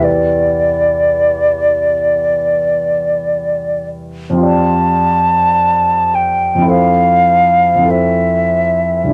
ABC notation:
X:1
M:4/4
L:1/8
Q:1/4=54
K:Flyd
V:1 name="Flute"
d6- d z | a3 g f2 e2 |]
V:2 name="Grand piano"
[E,,EGB]8 | [F,,CFGd]4 [F,,CEAc]2 [F,,CEAc]2 |]